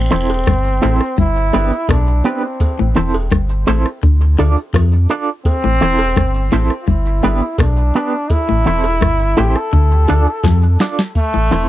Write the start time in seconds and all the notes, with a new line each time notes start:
Already playing: A1 C4
0.10 E1 E2 C4 E4 A4 C5, cross-stick, closed hi-hat
0.30 closed hi-hat, cowbell
0.46 G1 G2, kick, cross-stick, closed hi-hat
0.64 closed hi-hat
0.82 A1 A2 C4 E4 A4 C5, closed hi-hat, cowbell
1.01 cross-stick
1.18 G1 G2 E4, kick, closed hi-hat
1.36 closed hi-hat
1.53 G1 G2 B3 D4 G4 B4, closed hi-hat, cowbell
1.72 muted clean electric guitar stroke, closed hi-hat
1.89 B1 B2 D4, kick, cross-stick, closed hi-hat, cowbell
2.07 closed hi-hat
2.24 B3 C4 D4 G4 B4, closed hi-hat
2.44 muted clean electric guitar stroke
2.60 kick, closed hi-hat, cowbell
2.79 A1 A2
2.95 E1 E2 C4 E4 A4 C5, cross-stick, closed hi-hat
3.14 closed hi-hat, cowbell
3.31 G1 G2, kick, cross-stick, closed hi-hat
3.49 closed hi-hat
3.67 A1 A2 C4 E4 A4 C5, closed hi-hat, cowbell
3.86 cross-stick
4.03 D2 D3, kick, closed hi-hat
4.21 closed hi-hat
4.38 D2 D3 D4 F4 A4 D5, closed hi-hat, cowbell
4.57 muted clean electric guitar stroke, closed hi-hat
4.74 F2 F3, kick, cross-stick, closed hi-hat, cowbell
4.92 closed hi-hat
5.09 D4 F4 A4 D5, closed hi-hat
5.45 C4, kick, closed hi-hat, cowbell
5.64 A1 A2
5.80 E1 E2 C4 E4 A4 C5, cross-stick, closed hi-hat
5.99 closed hi-hat, cowbell
6.16 G1 G2, kick, cross-stick, closed hi-hat
6.34 closed hi-hat
6.51 A1 A2 C4 E4 A4 C5, closed hi-hat, cowbell
6.70 cross-stick
6.82 F4
6.87 G1 G2 E4, kick, closed hi-hat
7.06 closed hi-hat
7.23 G1 G2 B3 D4 G4 B4, closed hi-hat, cowbell
7.41 muted clean electric guitar stroke, closed hi-hat
7.58 B1 B2 D4, kick, cross-stick, closed hi-hat, cowbell
7.77 closed hi-hat
7.94 B3 D4 G4 B4, closed hi-hat
8.14 muted clean electric guitar stroke
8.30 E4, kick, closed hi-hat, cowbell
8.49 A1 A2
8.65 E1 E2 C4 E4 A4 C5, closed hi-hat
8.84 closed hi-hat, cowbell
9.01 G1 G2, kick, cross-stick, closed hi-hat
9.19 closed hi-hat
9.37 A1 A2 C4 E4 G4 A4 C5, closed hi-hat, cowbell
9.55 A4, cross-stick
9.73 D2 D3, kick, closed hi-hat
9.91 closed hi-hat
10.08 D2 D3 D4 F4 A4 D5, closed hi-hat, cowbell
10.27 muted clean electric guitar stroke, closed hi-hat
10.44 F2 F3, kick, snare, closed hi-hat, cowbell
10.62 closed hi-hat
10.79 D4 F4 A4 D5, snare, closed hi-hat
10.99 snare
11.15 A3, kick, closed hi-hat, crash
11.34 A1 A2
11.50 E1 E2 C4 E4 A4 C5, cross-stick, closed hi-hat